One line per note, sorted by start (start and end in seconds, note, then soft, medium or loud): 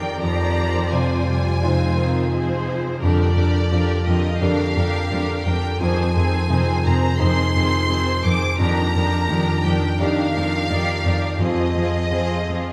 0.00 0.18 F2 soft
0.00 0.21 F2 soft
0.00 2.98 F2 soft
0.00 0.19 D#3 soft
0.00 0.24 D#3 soft
0.00 0.25 A#3 soft
0.00 0.18 D#4 soft
0.00 0.18 G4 soft
0.00 0.25 G4 soft
0.00 0.18 A#4 soft
0.00 0.21 A#4 soft
0.00 0.25 A#4 soft
0.00 1.63 D5 soft
0.00 0.92 D#5 soft
0.00 0.22 G5 medium
0.22 2.98 F2 soft
0.22 3.01 F2 soft
0.22 0.93 D#3 soft
0.22 0.93 G4 soft
0.22 1.61 C5 soft
0.22 0.91 A#5 medium
0.46 1.85 C4 soft
0.70 1.38 F4 soft
0.92 2.05 C3 soft
0.92 1.28 F3 soft
0.92 1.61 F4 soft
0.92 2.32 D#5 soft
0.92 2.67 G#5 medium
1.17 2.55 C5 soft
1.27 1.62 G3 soft
1.39 2.08 F4 soft
1.62 3.05 C3 soft
1.62 1.97 G#3 soft
1.62 2.31 C4 soft
1.62 2.99 D#4 soft
1.62 2.31 F4 soft
1.62 2.99 F4 soft
1.62 2.31 C5 soft
1.62 2.99 C5 soft
1.86 3.05 C4 soft
1.97 2.32 D#3 soft
2.10 2.77 F4 soft
2.32 3.02 F3 soft
2.32 3.01 C4 soft
2.32 3.01 G#4 soft
2.32 3.01 C5 soft
2.32 3.06 D#5 soft
2.56 3.05 C5 soft
2.79 5.84 F4 soft
3.01 4.40 F2 soft
3.01 5.77 F2 soft
3.01 3.11 F2 soft
3.01 3.36 D3 soft
3.01 3.36 D4 soft
3.01 3.35 G4 soft
3.01 3.35 A#4 soft
3.01 4.03 D5 medium
3.25 4.63 A#3 soft
3.36 3.45 F2 soft
3.36 3.71 D3 soft
3.36 3.71 D4 soft
3.36 3.70 G4 soft
3.36 3.69 A#4 soft
3.48 4.17 G4 soft
3.71 3.80 F2 soft
3.71 4.05 D3 soft
3.71 4.83 F3 soft
3.71 4.06 D4 soft
3.71 4.04 G4 soft
3.71 4.05 A#4 soft
3.71 5.84 D6 soft
3.95 5.33 A#4 soft
4.05 4.15 F2 soft
4.05 4.40 D3 soft
4.05 4.41 F4 soft
4.05 4.40 G4 soft
4.05 4.40 A#4 soft
4.05 4.41 D#5 medium
4.18 4.86 G4 soft
4.40 5.80 F2 soft
4.40 4.49 F2 soft
4.40 4.75 D3 soft
4.40 5.77 D4 soft
4.40 4.76 D4 soft
4.40 4.74 G4 soft
4.40 5.77 G4 soft
4.40 4.74 A#4 soft
4.40 5.78 A#4 soft
4.40 5.45 F5 medium
4.64 5.84 A#3 soft
4.75 4.84 F2 soft
4.75 5.10 D3 soft
4.75 5.10 D4 soft
4.75 5.09 G4 soft
4.75 5.09 A#4 soft
4.87 5.56 G4 soft
5.10 5.19 F2 soft
5.10 5.44 D3 soft
5.10 5.45 D4 soft
5.10 5.45 G4 soft
5.10 5.45 A#4 soft
5.10 5.84 D5 soft
5.34 5.84 A#4 soft
5.45 5.54 F2 soft
5.45 5.80 D3 soft
5.45 5.80 D4 soft
5.45 5.80 G4 soft
5.45 5.80 A#4 soft
5.45 5.81 G5 medium
5.57 5.84 G4 soft
5.80 5.88 F2 medium
5.80 6.15 F2 soft
5.80 7.18 F2 soft
5.80 6.15 D#3 soft
5.80 6.15 C4 soft
5.80 6.14 G#4 soft
5.80 6.14 C5 soft
5.80 6.83 G#5 medium
6.04 7.43 C4 soft
6.15 6.24 F2 soft
6.15 6.49 D#3 soft
6.15 6.50 C4 soft
6.15 6.49 G#4 soft
6.15 6.49 C5 soft
6.27 6.95 G#4 soft
6.50 6.59 F2 soft
6.50 6.85 C3 soft
6.50 6.84 D#3 soft
6.50 6.84 C4 soft
6.50 10.40 D#4 soft
6.50 6.85 G#4 soft
6.50 6.85 C5 soft
6.73 8.12 C5 soft
6.85 6.93 F2 soft
6.85 7.18 D#3 soft
6.85 7.18 C4 soft
6.85 7.20 G#4 soft
6.85 7.20 C5 soft
6.85 7.20 A#5 medium
6.97 7.66 G#4 soft
7.19 8.59 F2 soft
7.19 7.28 F2 soft
7.19 7.53 D#3 soft
7.19 7.53 C4 soft
7.19 8.55 D#4 soft
7.19 8.55 G#4 soft
7.19 7.54 G#4 soft
7.19 8.55 C5 soft
7.19 7.54 C5 soft
7.19 8.24 C6 medium
7.44 8.62 C4 soft
7.55 7.63 F2 soft
7.55 7.88 D#3 soft
7.55 7.88 C4 soft
7.55 7.88 G#4 soft
7.55 7.88 C5 soft
7.67 8.35 G#4 soft
7.89 7.98 F2 soft
7.89 8.23 D#3 soft
7.89 8.23 C4 soft
7.89 8.23 G#4 soft
7.89 8.22 C5 soft
8.14 8.62 C5 soft
8.23 8.32 F2 soft
8.23 8.57 D#3 soft
8.23 8.58 C4 soft
8.23 8.58 G#4 soft
8.23 8.58 C5 soft
8.23 8.59 D6 medium
8.36 8.62 G#4 soft
8.58 8.93 F2 soft
8.58 8.67 F2 medium
8.58 9.99 F2 medium
8.58 8.93 D#3 soft
8.58 8.93 D4 soft
8.58 8.93 G4 soft
8.58 8.93 A#4 soft
8.58 9.63 A#5 medium
8.83 11.43 A#3 soft
8.94 9.03 F2 soft
8.94 9.28 D#3 soft
8.94 9.28 D4 soft
8.94 9.28 G4 soft
8.94 9.28 A#4 soft
9.06 9.76 G4 soft
9.28 9.37 F2 medium
9.28 10.41 D#3 soft
9.28 9.63 D#3 soft
9.28 9.63 D4 soft
9.28 9.64 G4 soft
9.28 9.64 A#4 soft
9.28 12.73 G5 soft
9.53 10.93 D5 soft
9.64 9.72 F2 soft
9.64 9.98 D#3 soft
9.64 9.99 D4 soft
9.64 9.99 G4 soft
9.64 9.98 A#4 soft
9.64 10.00 G5 medium
9.77 10.46 G4 soft
9.99 10.08 F2 soft
9.99 11.39 F2 soft
9.99 10.33 D#3 soft
9.99 10.33 D4 soft
9.99 11.35 D#4 soft
9.99 10.33 G4 soft
9.99 11.36 G4 soft
9.99 10.34 A#4 soft
9.99 11.36 D5 soft
9.99 11.40 F5 medium
10.34 10.44 F2 soft
10.34 10.69 D#3 soft
10.34 10.69 D4 soft
10.34 10.69 G4 soft
10.34 10.69 A#4 soft
10.47 11.15 G4 soft
10.70 10.78 F2 soft
10.70 11.04 D#3 soft
10.70 11.04 G4 soft
10.70 11.04 A#4 soft
10.70 11.04 D5 soft
10.70 12.73 D#5 soft
10.94 11.43 D5 soft
11.05 11.13 F2 soft
11.05 11.40 D#3 soft
11.05 11.40 G4 soft
11.05 11.39 A#4 soft
11.05 11.40 D5 soft
11.17 11.43 G4 soft
11.39 11.47 F2 soft
11.39 12.73 F2 soft
11.39 11.76 F3 soft
11.39 11.75 C4 soft
11.39 11.75 F4 soft
11.39 11.75 G#4 soft
11.39 12.73 D#5 medium
11.63 12.73 C4 soft
11.75 11.83 F2 soft
11.75 12.11 F3 soft
11.75 12.11 C4 soft
11.75 12.11 F4 soft
11.75 12.11 G#4 soft
11.88 12.60 G#4 soft
12.12 12.20 F2 soft
12.12 12.47 F3 soft
12.12 12.48 C4 soft
12.12 12.48 F4 soft
12.12 12.73 G#4 soft
12.12 12.48 G#4 soft
12.12 12.73 C5 soft
12.12 12.73 F5 soft
12.37 12.73 C5 soft
12.49 12.57 F2 soft
12.49 12.73 F3 soft
12.49 12.73 C4 soft
12.49 12.73 F4 soft
12.49 12.73 G#4 soft
12.61 12.73 G#4 soft